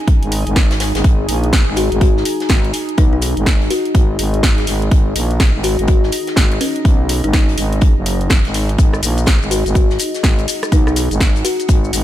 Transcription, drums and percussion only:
0.08 kick loud
0.08 closed hi-hat medium
0.23 closed hi-hat soft
0.32 open hi-hat loud
0.47 closed hi-hat medium
0.56 kick loud
0.56 snare loud
0.56 closed hi-hat medium
0.71 snare medium
0.71 closed hi-hat medium
0.71 closed hi-hat soft
0.80 snare loud
0.80 closed hi-hat medium
0.80 open hi-hat loud
0.95 snare loud
0.95 closed hi-hat medium
1.04 kick loud
1.04 closed hi-hat medium
1.28 closed hi-hat medium
1.28 open hi-hat loud
1.44 closed hi-hat medium
1.53 kick loud
1.53 snare loud
1.53 closed hi-hat medium
1.76 closed hi-hat medium
1.76 open hi-hat loud
1.92 closed hi-hat medium
2.01 kick loud
2.01 closed hi-hat medium
2.17 snare soft
2.25 closed hi-hat medium
2.25 open hi-hat loud
2.40 snare soft
2.40 closed hi-hat medium
2.49 kick loud
2.49 snare loud
2.49 closed hi-hat medium
2.65 closed hi-hat soft
2.73 closed hi-hat medium
2.73 open hi-hat loud
2.89 closed hi-hat medium
2.98 kick loud
2.98 closed hi-hat medium
3.22 closed hi-hat medium
3.22 open hi-hat loud
3.37 closed hi-hat medium
3.46 kick loud
3.46 snare loud
3.46 closed hi-hat medium
3.62 closed hi-hat soft
3.71 closed hi-hat medium
3.71 open hi-hat loud
3.85 closed hi-hat medium
3.95 kick loud
3.95 closed hi-hat medium
4.19 closed hi-hat medium
4.19 open hi-hat loud
4.34 closed hi-hat medium
4.43 kick loud
4.43 snare loud
4.43 closed hi-hat medium
4.58 snare soft
4.58 closed hi-hat soft
4.67 snare soft
4.67 closed hi-hat medium
4.67 open hi-hat loud
4.82 closed hi-hat medium
4.91 kick loud
4.91 closed hi-hat medium
5.16 closed hi-hat medium
5.16 open hi-hat loud
5.31 closed hi-hat medium
5.40 kick loud
5.40 snare loud
5.40 closed hi-hat medium
5.63 closed hi-hat medium
5.63 open hi-hat loud
5.79 closed hi-hat medium
5.88 kick loud
5.88 closed hi-hat medium
6.03 snare soft
6.12 closed hi-hat medium
6.12 open hi-hat loud
6.27 snare soft
6.27 closed hi-hat medium
6.36 kick loud
6.36 snare loud
6.36 closed hi-hat loud
6.36 closed hi-hat medium
6.52 closed hi-hat soft
6.61 closed hi-hat medium
6.61 open hi-hat loud
6.76 closed hi-hat soft
6.85 kick loud
6.85 closed hi-hat medium
7.09 closed hi-hat medium
7.09 open hi-hat loud
7.24 closed hi-hat soft
7.33 kick loud
7.33 snare loud
7.33 closed hi-hat medium
7.49 closed hi-hat soft
7.58 closed hi-hat medium
7.58 open hi-hat loud
7.73 closed hi-hat medium
7.81 kick loud
7.81 closed hi-hat medium
8.06 closed hi-hat medium
8.06 open hi-hat loud
8.21 closed hi-hat soft
8.30 kick loud
8.30 snare loud
8.30 closed hi-hat medium
8.45 snare soft
8.45 closed hi-hat soft
8.54 snare soft
8.54 closed hi-hat medium
8.54 open hi-hat loud
8.69 closed hi-hat soft
8.78 kick loud
8.78 closed hi-hat medium
8.78 shaker soft
8.93 cross-stick medium
8.93 shaker soft
9.03 closed hi-hat medium
9.03 open hi-hat loud
9.03 shaker medium
9.18 closed hi-hat medium
9.18 shaker soft
9.26 kick loud
9.26 snare loud
9.26 closed hi-hat medium
9.26 shaker soft
9.42 shaker soft
9.51 closed hi-hat medium
9.51 open hi-hat loud
9.51 shaker medium
9.66 closed hi-hat soft
9.66 shaker soft
9.75 kick loud
9.75 closed hi-hat medium
9.75 shaker soft
9.90 snare soft
9.90 shaker soft
9.99 closed hi-hat medium
9.99 open hi-hat loud
9.99 shaker medium
10.14 snare soft
10.14 closed hi-hat soft
10.14 shaker soft
10.23 kick loud
10.23 snare loud
10.23 closed hi-hat medium
10.23 shaker soft
10.39 closed hi-hat soft
10.39 shaker soft
10.48 closed hi-hat medium
10.48 open hi-hat loud
10.48 shaker medium
10.63 cross-stick medium
10.63 closed hi-hat soft
10.63 shaker soft
10.72 kick loud
10.72 closed hi-hat medium
10.72 shaker soft
10.87 cross-stick medium
10.87 shaker soft
10.96 closed hi-hat medium
10.96 open hi-hat loud
10.96 shaker medium
11.11 closed hi-hat medium
11.11 shaker soft
11.20 kick loud
11.20 snare loud
11.20 closed hi-hat medium
11.20 shaker soft
11.36 closed hi-hat soft
11.36 shaker soft
11.45 closed hi-hat medium
11.45 open hi-hat loud
11.45 shaker medium
11.60 closed hi-hat medium
11.60 shaker soft
11.69 kick loud
11.69 closed hi-hat medium
11.69 shaker soft
11.84 shaker soft
11.93 closed hi-hat medium
11.93 open hi-hat loud
11.93 shaker medium

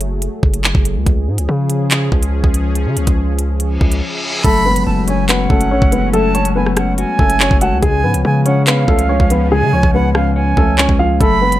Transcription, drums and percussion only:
0.01 closed hi-hat medium
0.22 closed hi-hat medium
0.43 kick medium
0.54 closed hi-hat medium
0.64 clap loud
0.75 kick loud
0.85 closed hi-hat medium
1.06 kick loud
1.06 closed hi-hat medium
1.38 closed hi-hat medium
1.70 closed hi-hat medium
1.91 clap loud
1.91 closed hi-hat medium
2.12 kick medium
2.23 closed hi-hat medium
2.44 kick loud
2.54 closed hi-hat medium
2.75 closed hi-hat medium
2.97 closed hi-hat medium
3.07 kick loud
3.07 closed hi-hat medium
3.39 closed hi-hat medium
3.60 closed hi-hat medium
3.81 kick medium
3.92 closed hi-hat medium
4.44 kick loud
4.44 closed hi-hat medium
4.44 crash loud
4.76 closed hi-hat medium
5.08 closed hi-hat medium
5.29 clap loud
5.29 closed hi-hat medium
5.50 kick medium
5.61 closed hi-hat medium
5.82 kick loud
5.92 closed hi-hat medium
6.14 closed hi-hat medium
6.35 closed hi-hat medium
6.45 closed hi-hat medium
6.66 cross-stick medium
6.77 cross-stick loud
6.77 closed hi-hat medium
6.98 closed hi-hat medium
7.19 kick medium
7.30 closed hi-hat medium
7.40 clap loud
7.51 kick loud
7.61 closed hi-hat medium
7.83 kick loud
7.83 closed hi-hat medium
8.14 closed hi-hat medium
8.46 closed hi-hat medium
8.67 clap loud
8.67 closed hi-hat medium
8.88 kick medium
8.99 closed hi-hat medium
9.20 kick loud
9.30 closed hi-hat medium
9.83 kick loud
10.15 cross-stick loud
10.57 kick medium
10.78 clap loud
10.89 kick loud
11.21 kick loud
11.21 closed hi-hat medium
11.52 closed hi-hat medium

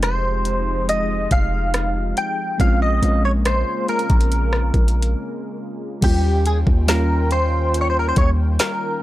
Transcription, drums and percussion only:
0.03 cross-stick loud
0.03 closed hi-hat medium
0.45 closed hi-hat medium
0.89 closed hi-hat medium
1.31 kick medium
1.31 closed hi-hat medium
1.74 cross-stick loud
1.74 closed hi-hat medium
2.17 closed hi-hat medium
2.60 kick loud
2.60 closed hi-hat medium
3.03 closed hi-hat medium
3.45 cross-stick loud
3.45 closed hi-hat medium
3.88 closed hi-hat soft
3.99 closed hi-hat soft
4.10 kick loud
4.10 closed hi-hat medium
4.21 closed hi-hat medium
4.32 closed hi-hat medium
4.53 cross-stick loud
4.74 kick medium
4.74 closed hi-hat soft
4.88 closed hi-hat medium
5.02 closed hi-hat medium
6.02 kick loud
6.02 closed hi-hat medium
6.02 crash loud
6.46 closed hi-hat medium
6.67 kick medium
6.88 snare loud
6.88 closed hi-hat medium
7.31 closed hi-hat medium
7.74 closed hi-hat medium
8.16 kick loud
8.16 closed hi-hat medium
8.59 snare loud
8.59 closed hi-hat medium

